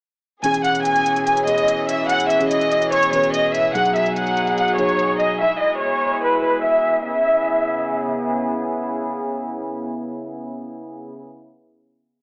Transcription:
0.43 1.07 B2 medium
0.43 7.02 B2 medium
0.43 3.72 E3 medium
0.43 1.08 E3 medium
0.43 3.72 C#4 medium
0.43 1.08 C#4 medium
0.43 7.02 G#4 medium
0.43 1.09 G#4 loud
0.43 0.60 G#5 loud
0.43 closed hi-hat medium
0.54 closed hi-hat medium
0.65 0.81 F#5 medium
0.65 closed hi-hat medium
0.75 closed hi-hat medium
0.85 1.24 G#5 medium
0.85 closed hi-hat medium
0.96 closed hi-hat soft
1.06 closed hi-hat medium
1.16 closed hi-hat soft
1.26 1.43 G#5 medium
1.26 closed hi-hat medium
1.37 closed hi-hat medium
1.45 2.10 B2 medium
1.45 2.11 E3 medium
1.45 2.11 C#4 medium
1.45 2.12 G#4 medium
1.45 1.86 D#5 medium
1.45 closed hi-hat medium
1.58 closed hi-hat medium
1.68 closed hi-hat medium
1.89 2.05 E5 medium
1.89 closed hi-hat medium
2.09 2.26 F#5 loud
2.09 closed hi-hat medium
2.20 closed hi-hat medium
2.30 2.46 E5 medium
2.30 closed hi-hat medium
2.39 2.95 B2 medium
2.39 2.96 E3 medium
2.39 2.96 C#4 medium
2.39 2.97 G#4 medium
2.39 closed hi-hat medium
2.50 2.90 D#5 medium
2.50 closed hi-hat medium
2.61 closed hi-hat soft
2.72 closed hi-hat medium
2.82 closed hi-hat soft
2.92 3.09 C#5 medium
2.92 closed hi-hat medium
3.03 closed hi-hat medium
3.12 3.60 B2 medium
3.12 3.61 E3 medium
3.12 3.61 C#4 medium
3.12 3.62 B4 medium
3.12 3.29 C#5 medium
3.12 closed hi-hat medium
3.23 closed hi-hat medium
3.33 3.50 D#5 medium
3.33 closed hi-hat medium
3.54 3.70 E5 medium
3.54 closed hi-hat medium
3.73 4.38 B2 loud
3.73 4.38 F#3 medium
3.73 5.39 F#3 medium
3.73 5.39 D#4 medium
3.73 4.39 D#4 medium
3.73 4.39 G#4 loud
3.73 3.91 F#5 loud
3.73 closed hi-hat medium
3.85 closed hi-hat medium
3.96 4.12 E5 medium
3.96 closed hi-hat medium
4.06 closed hi-hat medium
4.16 4.55 F#5 medium
4.16 closed hi-hat medium
4.27 closed hi-hat soft
4.37 closed hi-hat medium
4.47 closed hi-hat soft
4.58 4.74 F#5 medium
4.58 closed hi-hat medium
4.68 closed hi-hat medium
4.77 5.40 B2 medium
4.77 5.40 F#3 medium
4.77 5.41 D#4 medium
4.77 5.41 G#4 medium
4.77 5.17 C#5 medium
4.77 closed hi-hat medium
4.89 closed hi-hat medium
4.99 closed hi-hat medium
5.19 5.36 D#5 medium
5.19 closed hi-hat medium
5.40 7.04 G#3 medium
5.40 7.04 E4 medium
5.40 5.57 E5 medium
5.61 5.77 D#5 medium
5.82 6.21 C#5 medium
6.24 6.40 B4 medium
6.44 6.60 B4 medium
6.65 7.04 E5 medium
7.06 11.13 C#3 medium
7.06 11.13 B3 medium
7.06 11.13 E4 medium
7.06 11.13 G#4 medium
7.06 8.26 E5 medium

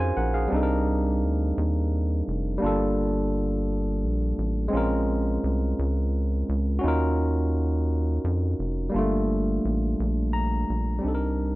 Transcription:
0.00 0.12 F2 medium
0.00 0.45 C#4 medium
0.00 0.46 D#4 medium
0.00 0.48 F4 medium
0.00 0.44 F#4 medium
0.00 0.35 G#4 medium
0.00 0.17 A#4 medium
0.00 0.15 C5 medium
0.00 0.34 F5 medium
0.00 0.15 G#5 medium
0.17 0.48 A#1 medium
0.17 0.33 A#4 medium
0.17 0.33 F#5 medium
0.34 0.67 G#4 medium
0.34 0.67 F5 medium
0.48 2.55 G3 medium
0.48 2.57 C4 medium
0.52 1.24 C2 loud
0.52 2.57 D4 medium
0.52 2.59 D#4 medium
0.56 0.60 A4 medium
0.63 2.63 A#4 medium
1.22 1.53 D2 loud
1.58 2.23 D#2 loud
2.28 2.58 F1 medium
2.58 4.66 G3 medium
2.58 4.67 A#3 medium
2.62 4.05 G1 medium
2.62 4.68 D4 medium
2.62 4.69 F4 medium
2.66 4.70 A4 medium
4.03 4.34 A#1 loud
4.38 4.69 A1 medium
4.68 6.76 G#3 medium
4.68 6.77 C4 medium
4.73 5.38 A#1 medium
4.73 6.78 C#4 medium
4.73 6.79 F4 medium
4.77 6.81 A#4 medium
5.44 5.74 C2 loud
5.79 6.44 C#2 loud
6.49 6.79 C#2 medium
6.79 8.88 C#4 medium
6.79 8.87 F#4 medium
6.84 8.19 D#2 loud
6.84 8.89 D#4 medium
6.84 8.90 F4 medium
6.88 8.91 A#4 medium
8.24 8.55 F2 loud
8.59 8.90 F1 medium
8.89 10.97 G3 medium
8.89 10.98 A#3 medium
8.94 9.59 G1 loud
8.94 11.00 D4 medium
8.94 11.01 F4 medium
8.98 11.02 A3 medium
9.65 9.95 A1 loud
10.00 10.65 A#1 loud
10.33 10.99 A#5 medium
10.70 11.00 A#1 medium
10.99 11.55 G3 medium
10.99 11.55 C4 medium
11.03 11.55 C2 medium
11.03 11.55 D4 medium
11.03 11.55 D#4 medium
11.08 11.12 A4 medium
11.15 11.55 A#4 medium

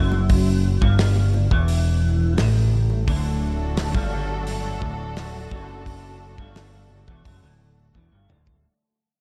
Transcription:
0.00 0.78 F#1 medium
0.00 0.81 F#2 medium
0.12 high conga medium
0.29 kick loud
0.29 open hi-hat medium
0.81 1.47 G1 medium
0.81 1.50 G2 loud
0.81 kick loud
0.99 snare loud
0.99 open hi-hat medium
1.16 high conga medium
1.34 low conga medium
1.51 2.34 E1 loud
1.51 2.38 E2 medium
1.51 kick loud
1.68 open hi-hat medium
2.38 3.04 A1 loud
2.38 3.07 A2 loud
2.38 snare loud
2.38 open hi-hat medium
2.57 high conga medium
2.73 low conga medium
2.90 high conga medium
3.05 3.91 D1 medium
3.05 3.94 D2 loud
3.05 8.60 F#3 medium
3.05 8.60 A3 medium
3.05 8.60 D4 medium
3.05 8.59 F#4 medium
3.05 8.60 A4 loud
3.05 kick loud
3.05 open hi-hat medium
3.77 snare loud
3.77 open hi-hat medium
3.94 4.78 G1 medium
3.94 4.81 G2 loud
3.94 kick loud
3.94 high conga medium
4.13 low conga medium
4.47 open hi-hat medium
4.82 5.47 D1 loud
4.82 5.50 D2 loud
4.82 kick loud
5.17 snare loud
5.17 open hi-hat medium
5.34 high conga medium
5.51 6.35 F#1 loud
5.51 6.37 F#2 loud
5.51 kick loud
5.51 low conga medium
5.69 high conga medium
5.86 kick loud
5.86 open hi-hat medium
6.38 7.04 G1 loud
6.38 7.07 G2 medium
6.38 kick medium
6.38 high conga medium
6.56 snare loud
6.56 open hi-hat medium
6.74 high conga medium
6.90 low conga medium
7.08 7.24 E1 medium
7.08 7.24 E2 loud
7.08 kick loud
7.25 7.42 F#1 medium
7.25 7.42 F#2 loud
7.25 kick loud
7.25 open hi-hat medium
7.25 high conga medium
7.43 7.92 D1 medium
7.43 7.94 D2 loud
7.60 low conga medium
7.94 8.11 E1 loud
7.94 8.11 E2 loud
7.94 kick medium
8.12 8.29 G1 medium
8.12 8.29 G2 medium
8.12 high conga medium
8.29 8.63 D1 loud
8.29 8.63 D2 loud
8.29 mid tom medium
8.29 low conga medium
8.47 kick medium
8.47 high conga medium

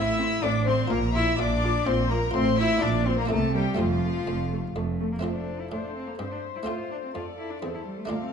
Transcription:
0.00 0.37 A1 medium
0.00 0.34 A2 medium
0.00 0.37 A2 medium
0.00 0.85 C4 medium
0.00 0.45 E4 loud
0.00 0.86 A4 medium
0.00 0.41 E5 medium
0.00 0.42 E6 loud
0.19 0.27 C4 medium
0.43 0.85 A1 medium
0.43 0.85 A2 medium
0.43 0.82 A2 medium
0.43 0.51 C4 medium
0.43 0.69 D4 medium
0.43 0.51 D5 medium
0.43 0.66 D6 loud
0.66 0.75 C4 medium
0.66 0.90 C4 medium
0.66 0.90 C5 medium
0.66 0.90 C6 loud
0.87 1.33 A#1 loud
0.87 1.29 A#2 medium
0.87 1.33 A#2 medium
0.87 0.98 A#3 loud
0.87 2.28 F4 medium
0.87 0.99 F4 medium
0.87 1.14 A#4 medium
0.87 1.14 A#5 loud
1.13 1.38 E4 loud
1.13 1.23 F4 medium
1.13 1.37 E5 loud
1.13 1.38 E6 loud
1.37 1.80 A#1 medium
1.37 1.80 A#2 medium
1.37 1.77 A#2 medium
1.37 1.88 D4 medium
1.37 1.47 F4 medium
1.37 1.85 D5 medium
1.37 1.86 D6 loud
1.63 1.71 F4 medium
1.86 2.28 A#1 medium
1.86 2.28 A#2 medium
1.86 2.25 A#2 medium
1.86 2.10 C4 medium
1.86 1.95 F4 medium
1.86 2.10 C5 medium
1.86 2.10 C6 loud
2.10 2.19 A#3 medium
2.10 2.18 F4 medium
2.10 2.34 A#4 loud
2.10 2.34 A#5 loud
2.31 2.76 A1 medium
2.31 2.76 A2 medium
2.31 2.73 A2 medium
2.31 2.58 C4 loud
2.31 2.79 F4 medium
2.31 2.42 F4 medium
2.31 2.58 C5 loud
2.31 2.57 C6 loud
2.58 2.83 E4 loud
2.58 2.67 F4 medium
2.58 2.82 E5 loud
2.58 2.82 E6 loud
2.78 3.24 A#2 medium
2.78 3.24 A#3 medium
2.78 3.27 D4 medium
2.78 3.28 F4 medium
2.78 3.05 D5 medium
2.82 3.25 A#1 medium
2.82 3.21 A#2 medium
2.82 3.08 D4 medium
2.82 2.90 F4 medium
2.82 3.06 D6 loud
3.06 3.18 C4 medium
3.06 3.15 F4 medium
3.06 3.18 C5 medium
3.06 3.18 C6 medium
3.17 3.30 A#3 medium
3.17 3.30 A#4 medium
3.17 3.30 A#5 medium
3.26 3.75 A#3 medium
3.26 3.75 C4 medium
3.26 3.76 E4 medium
3.30 3.73 C2 medium
3.30 3.70 C3 medium
3.30 3.73 C3 medium
3.30 3.54 A3 medium
3.30 3.39 A#3 medium
3.30 3.54 A4 medium
3.30 3.54 A5 loud
3.54 3.80 G3 medium
3.54 3.63 A#3 medium
3.54 3.78 G4 medium
3.54 3.78 G5 medium
3.75 4.21 F1 medium
3.75 4.21 F2 medium
3.75 5.18 A3 medium
3.75 5.19 C4 medium
3.75 5.19 F4 medium
3.79 4.18 F2 medium
3.79 4.76 F3 medium
3.79 3.87 A3 medium
3.79 4.76 F4 medium
3.79 4.76 F5 loud
4.04 4.12 A3 medium
4.27 4.70 F1 medium
4.27 4.70 F2 medium
4.27 4.67 F2 medium
4.27 4.36 A3 medium
4.53 4.61 A3 medium
4.75 5.18 F1 medium
4.75 5.18 F2 medium
4.75 5.15 F2 medium
4.75 4.84 A3 medium
5.00 5.11 A3 medium
5.00 5.08 A3 medium
5.12 5.17 A#3 medium
5.19 5.68 F2 soft
5.19 6.14 A3 soft
5.19 6.15 C4 soft
5.19 6.63 F4 soft
5.24 5.68 F2 soft
5.24 5.35 C4 medium
5.24 5.69 A4 soft
5.24 5.69 C5 soft
5.24 6.16 F5 soft
5.35 5.62 D4 soft
5.60 5.71 E4 soft
5.71 6.16 A2 soft
5.71 5.95 D4 medium
5.71 6.19 A4 soft
5.71 6.19 C5 soft
5.95 6.09 C4 medium
6.08 6.19 A#3 soft
6.19 6.64 G2 soft
6.19 6.63 G2 soft
6.19 6.24 C4 medium
6.19 6.65 C5 soft
6.19 7.14 C5 soft
6.19 6.66 E5 soft
6.31 6.39 D4 medium
6.56 6.60 E4 soft
6.63 7.11 A2 soft
6.63 8.04 A3 soft
6.63 8.05 C4 soft
6.63 8.06 F4 soft
6.63 6.91 F4 medium
6.63 7.13 C5 soft
6.67 7.11 A2 soft
6.67 7.13 F5 soft
6.91 6.96 D4 medium
7.03 7.14 C4 soft
7.14 7.59 F2 soft
7.14 7.22 F4 medium
7.14 7.62 A4 soft
7.14 7.63 D5 soft
7.14 8.08 F5 soft
7.38 7.52 E4 medium
7.50 7.62 D4 medium
7.62 8.07 E2 soft
7.62 8.06 E2 soft
7.62 7.67 C4 medium
7.62 8.09 A4 soft
7.62 8.11 C5 soft
7.74 7.79 E4 medium
7.85 8.00 G3 medium
7.98 8.11 A3 soft
8.05 8.33 A3 soft
8.05 8.21 A#3 medium
8.05 8.33 D4 soft
8.05 8.33 F4 soft
8.10 8.33 D2 medium
8.10 8.33 D2 soft
8.10 8.33 A4 soft
8.10 8.33 F5 soft
8.22 8.30 C4 medium

